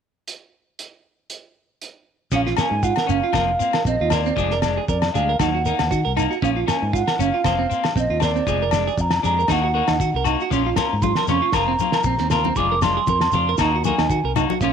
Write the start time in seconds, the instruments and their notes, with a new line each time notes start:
0.28 closed hi-hat
0.79 closed hi-hat
1.30 closed hi-hat
1.82 closed hi-hat
2.31 fingered electric bass A#1, clean electric guitar F3 A#3 C#4, flute F5, kick, snare, shekere
2.47 clean electric guitar F4, snare
2.57 clean electric guitar A#3 C#4 A#4, flute G#5, snare, low agogo, shekere
2.71 fingered electric bass G#2
2.83 clean electric guitar F4, flute F#5, kick, shekere
2.96 clean electric guitar A#4, snare, low agogo
3.07 fingered electric bass F#1, clean electric guitar A#3 C#4, flute F5, shekere
3.23 clean electric guitar F4
3.33 fingered electric bass F1, clean electric guitar F3 A#3 C4 A#4, kick, snare, low agogo, shekere
3.59 clean electric guitar A#3 C4, shekere
3.73 clean electric guitar A#4, snare, low agogo
3.85 fingered electric bass A#1, clean electric guitar C4, flute D#5, kick, shekere
4.01 fingered electric bass D#2, clean electric guitar F4
4.10 clean electric guitar A#3 C4 A#4, flute D5, snare, low agogo, shekere
4.25 clean electric guitar C4, shekere
4.36 fingered electric bass F1, clean electric guitar F3 G#3 D4 G#4, kick, shekere
4.51 clean electric guitar A#4, snare
4.62 clean electric guitar G#3 D4, snare, low agogo, shekere
4.77 clean electric guitar G#4
4.88 fingered electric bass F2, clean electric guitar A#4, flute D5, kick, shekere
5.02 snare, low agogo
5.14 fingered electric bass D2, clean electric guitar G#3 D4 G#4, flute F5, shekere
5.29 clean electric guitar A#4
5.39 fingered electric bass D#2, clean electric guitar F#3 A#3 D#4, flute F#5, muted clean electric guitar stroke, kick, snare, low agogo, shekere
5.55 clean electric guitar F#4
5.66 clean electric guitar A#3 D#4 A#4, shekere
5.79 fingered electric bass D#2, muted clean electric guitar stroke, snare, low agogo
5.91 fingered electric bass D#3, clean electric guitar F#4, kick, shekere
6.05 fingered electric bass C2, clean electric guitar A#4
6.17 clean electric guitar A#3 D#4, low agogo, shekere
6.31 clean electric guitar F#4, shekere
6.42 fingered electric bass A#1, clean electric guitar F3 A#3 C#4, flute F5, kick, shekere
6.56 clean electric guitar F4
6.67 clean electric guitar A#3 C#4 A#4, flute G#5, snare, low agogo, shekere
6.82 fingered electric bass G#2
6.93 clean electric guitar F4, flute F#5, kick, shekere
7.08 clean electric guitar A#4, snare, low agogo
7.19 fingered electric bass F#1, clean electric guitar A#3 C#4, flute F5, shekere
7.34 clean electric guitar F4
7.44 fingered electric bass F1, clean electric guitar F3 A#3 C4 C5, kick, snare, low agogo, shekere
7.59 clean electric guitar C4
7.70 clean electric guitar A#3 C4, shekere
7.84 muted clean electric guitar stroke, snare, low agogo
7.96 fingered electric bass A#1, clean electric guitar C4, flute D#5, kick, shekere
8.10 fingered electric bass D#2, clean electric guitar F4
8.20 clean electric guitar C4 A#4, flute D5, snare, low agogo, shekere
8.36 clean electric guitar C4, shekere
8.47 fingered electric bass F1, clean electric guitar F3 G#3 G#4, muted clean electric guitar stroke, kick, shekere
8.62 clean electric guitar A#4
8.71 clean electric guitar G#3 D4, snare, low agogo, shekere
8.88 clean electric guitar G#4, shekere
8.98 fingered electric bass F2, flute A#5, kick, shekere
9.10 snare, low agogo
9.23 fingered electric bass F2, clean electric guitar G#3 D4 G#4, flute A#5, snare, shekere
9.39 clean electric guitar A#4, shekere
9.48 fingered electric bass D#2, clean electric guitar D#3 A#3 D#4 F#4, flute F#5, kick, snare, low agogo, shekere
9.64 clean electric guitar F#4
9.74 clean electric guitar A#3 D#4 F#4 A#4
9.88 fingered electric bass D#2, clean electric guitar D#4, snare, low agogo
10.00 fingered electric bass D#3, clean electric guitar F#4, kick, shekere
10.14 fingered electric bass C2, clean electric guitar A#4
10.24 clean electric guitar A#3 D#4 F#4, low agogo, shekere
10.40 clean electric guitar F#4, shekere
10.51 fingered electric bass A#1, clean electric guitar F3 A#3 C#4 F4, kick, shekere
10.66 clean electric guitar F4
10.76 clean electric guitar A#3 C#4 F4 A#4, flute A#5, snare, high conga, low agogo, shekere
10.93 fingered electric bass G#2
11.02 clean electric guitar F4, flute C6, kick, high conga, shekere
11.15 clean electric guitar A#4, snare, low agogo
11.27 fingered electric bass F2, clean electric guitar A#3 C#4 F4, flute C#6, snare, low conga, shekere
11.42 clean electric guitar F4
11.52 fingered electric bass F1, clean electric guitar F3 A#3 C4 F4 A#4, flute A#5, kick, snare, low agogo, shekere
11.68 clean electric guitar C4
11.79 clean electric guitar C4 F4, high conga, shekere
11.83 clean electric guitar A#3
11.92 clean electric guitar A#4, snare, low agogo
12.03 fingered electric bass A#1, clean electric guitar C4, kick, shekere
12.18 fingered electric bass D#2, clean electric guitar C4, snare
12.30 clean electric guitar C4 F4 A#4, flute A#5, snare, low conga, low agogo, shekere
12.44 clean electric guitar C4, high conga, shekere
12.56 fingered electric bass F1, clean electric guitar F3 G#3 D4 F4 G#4, flute D6, kick, shekere
12.72 clean electric guitar A#4
12.82 clean electric guitar G#3 D4 F4, flute C6, snare, high conga, low agogo, shekere
12.97 clean electric guitar G#4
13.07 fingered electric bass F2, clean electric guitar A#4, kick, high conga, shekere
13.21 snare, low agogo
13.32 fingered electric bass F2, clean electric guitar D4 F4, muted clean electric guitar stroke, low conga, shekere
13.49 clean electric guitar A#4
13.57 fingered electric bass D#2, clean electric guitar D#3 A#3 D#4, flute A#5, kick, snare, low agogo, shekere
13.62 clean electric guitar F#4
13.75 clean electric guitar F#4
13.84 clean electric guitar D#4 F#4 A#4, flute G#5, high conga, shekere
13.88 clean electric guitar A#3
13.98 fingered electric bass D#2, clean electric guitar D#4, snare, low agogo
14.10 fingered electric bass D#3, clean electric guitar F#4, kick, shekere
14.24 fingered electric bass C2, clean electric guitar A#4
14.36 clean electric guitar A#3 D#4 F#4, high conga, low conga, low agogo, shekere
14.50 clean electric guitar F#4, high conga, shekere
14.61 fingered electric bass A#1, clean electric guitar F3 A#3 C#4 F4, flute F5, kick, shekere